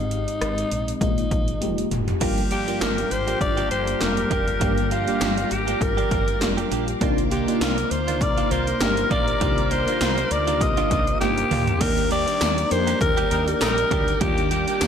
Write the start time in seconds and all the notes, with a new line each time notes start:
Already playing: G#1 G#2 G#3 C4 D#4 G4
0.11 closed hi-hat
0.28 closed hi-hat
0.41 G#1, cross-stick, closed hi-hat
0.58 closed hi-hat
0.71 A#1, closed hi-hat
0.88 closed hi-hat
1.01 A#1 A#2 G#3 A#3 D4 D#4 F4, kick, closed hi-hat
1.08 D#4
1.18 closed hi-hat
1.31 A#1, kick, closed hi-hat
1.48 closed hi-hat
1.61 F1 G#3 A#3 D#4 G4, closed hi-hat, high tom
1.78 closed hi-hat
1.91 F1, closed hi-hat, mid tom
2.08 closed hi-hat, floor tom
2.21 G1 G2 D3 F3 G3 A#3 D4 F4 G4 D5 F5 A#5, kick, closed hi-hat, crash
2.38 closed hi-hat
2.51 F3 A#3 D4 G4, closed hi-hat
2.68 F3 G3 A#3 D4 F4 G4, closed hi-hat
2.81 G1 F3 A#3 D4 G4 A#4, snare, closed hi-hat
2.98 muted clean electric guitar stroke, closed hi-hat
3.11 G#1 C5, muted clean electric guitar stroke, closed hi-hat
3.27 F3 A#3 D4 G4, closed hi-hat
3.41 G1 D5, muted clean electric guitar stroke, kick, closed hi-hat
3.57 F3 A#3 D4 G4, closed hi-hat
3.71 G1 F3 A#3 D4 G4 C5, closed hi-hat
3.87 muted clean electric guitar stroke, closed hi-hat
4.00 F1 G3 A#3 D4 F4 A#4, muted clean electric guitar stroke, snare, closed hi-hat
4.17 muted clean electric guitar stroke, closed hi-hat
4.30 F1 F3 A#3 D4 G4 A#4, kick, closed hi-hat
4.47 muted clean electric guitar stroke, closed hi-hat
4.60 G1 G2 F3 G3 A#3 D4 F4 G4, kick, closed hi-hat
4.78 closed hi-hat
4.91 F3 A#3 D4 F4 G4, closed hi-hat
5.07 F3 G3 A#3 D4 G4, closed hi-hat
5.20 G1 F3 A#3 D4 G4, snare, closed hi-hat
5.37 muted clean electric guitar stroke, closed hi-hat
5.51 G#1 G4, muted clean electric guitar stroke, closed hi-hat
5.67 F3 A#3 D4 G4, closed hi-hat
5.81 G1 A#4, muted clean electric guitar stroke, kick, closed hi-hat
5.97 F3 A#3 D4 G4, closed hi-hat
6.11 G1 F3 A#3 D4 G4, kick, closed hi-hat
6.27 muted clean electric guitar stroke, closed hi-hat
6.40 F1 G3 A#3 D4 F4, muted clean electric guitar stroke, snare, closed hi-hat
6.57 F3 A#3 D4 G4, closed hi-hat
6.71 A#1 F3 A#3 D4 G4, closed hi-hat
6.88 muted clean electric guitar stroke, closed hi-hat
7.01 C2 C3 D#3 A#3 D4 D#4 F4 A#4 C5 D6, kick, closed hi-hat
7.18 closed hi-hat
7.31 D#3 A#3 D4 F4 G4, closed hi-hat
7.47 D#3 A#3 D4 D#4 F4, closed hi-hat
7.61 C2 D#3 A#3 D4 F4 A#4, snare, closed hi-hat
7.78 muted clean electric guitar stroke, closed hi-hat
7.91 D2 C5, muted clean electric guitar stroke, closed hi-hat
8.08 D#3 A#3 D4 F4, closed hi-hat
8.21 C2 G3 F4 A#4 D5, muted clean electric guitar stroke, kick, closed hi-hat
8.37 D#3 A#3 D4 F4, closed hi-hat
8.51 C2 D#3 A#3 D4 F4 C5, closed hi-hat
8.67 muted clean electric guitar stroke, closed hi-hat
8.81 G1 A#3 D4 D#4 G4 A#4, muted clean electric guitar stroke, snare, closed hi-hat
8.97 muted clean electric guitar stroke, closed hi-hat
9.11 A#1 D#3 A#3 D4 F4 D5, kick, closed hi-hat
9.27 muted clean electric guitar stroke, closed hi-hat
9.40 C2 C3 D#3 A#3 D4 D#4 F4 G4, kick, closed hi-hat
9.58 closed hi-hat
9.70 D#3 A#3 D4 F4 C5, closed hi-hat
9.87 D#3 A#3 D4 D#4 F4, closed hi-hat
10.00 C2 D#3 A#3 D4 F4, snare, closed hi-hat
10.17 muted clean electric guitar stroke, closed hi-hat
10.31 D2 D5, muted clean electric guitar stroke, closed hi-hat
10.47 D#3 A#3 D4 F4, closed hi-hat
10.61 C2 D#5, muted clean electric guitar stroke, kick, closed hi-hat
10.77 D#3 A#3 D4 F4, closed hi-hat
10.91 C2 D#3 A#3 D4 F4, kick, closed hi-hat
11.07 muted clean electric guitar stroke, closed hi-hat
11.21 G1 A#3 D4 D#4 G4, muted clean electric guitar stroke, snare, closed hi-hat
11.38 muted clean electric guitar stroke, closed hi-hat
11.51 D2 D#3 A#3 D4 F4, mid tom, open hi-hat
11.67 muted clean electric guitar stroke, closed hi-hat, floor tom
11.81 D#2 D#3 G3 A#3 D4 D#4 G4 A#4 D5 G5 D6, kick, closed hi-hat, crash
11.98 closed hi-hat
12.11 G3 A#3 D4 G4 D5, closed hi-hat
12.27 G3 A#3 D4 G4, closed hi-hat
12.41 D#2 G3 A#3 D4 G4, snare, closed hi-hat, tambourine
12.57 muted clean electric guitar stroke, closed hi-hat
12.71 F2 A#3 D4 D#4 A#4 C5, muted clean electric guitar stroke, closed hi-hat
12.87 G3 A#3 D4 G4, closed hi-hat
13.01 D#2 A#4, muted clean electric guitar stroke, kick, closed hi-hat
13.17 G3 A#3 D4 G4, closed hi-hat
13.31 D#2 G3 A#3 D4 D#4 G4 A#4, closed hi-hat
13.47 A#3 D4 D#4 G4, muted clean electric guitar stroke, closed hi-hat
13.61 A#1 G3 D#4 A#4, muted clean electric guitar stroke, snare, closed hi-hat, tambourine
13.78 muted clean electric guitar stroke, closed hi-hat
13.91 D2 G3 A#3 D4 G4, kick, closed hi-hat
14.08 muted clean electric guitar stroke, closed hi-hat
14.20 D#2 D#3 G3 A#3 D4 D#4 F4 G4, kick, closed hi-hat
14.38 closed hi-hat
14.51 G3 A#3 D4 G4, closed hi-hat
14.67 G3 A#3 D4 G4, closed hi-hat
14.81 D#2 G3 A#3 D4 G4, snare, closed hi-hat, tambourine